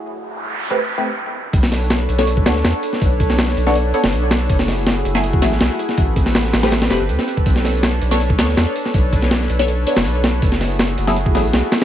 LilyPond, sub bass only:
\new Staff \with { instrumentName = "Sub bass" } { \clef bass \time 4/4 \key b \dorian \tempo 4 = 162 r1 | b,,4. b,,4 d,8 e,16 r8. | b,,4. b,,4 r16 fis,,16 b,,4 | fis,,4. fis,,4 a,,8 b,,16 r8. |
a,,4. a,,4 e,,16 g,,16 d,16 r8. | b,,4. b,,4 d,8 e,16 r8. | b,,4. b,,4 r16 fis,,16 b,,4 | fis,,4. fis,,4 a,,8 b,,16 r8. | }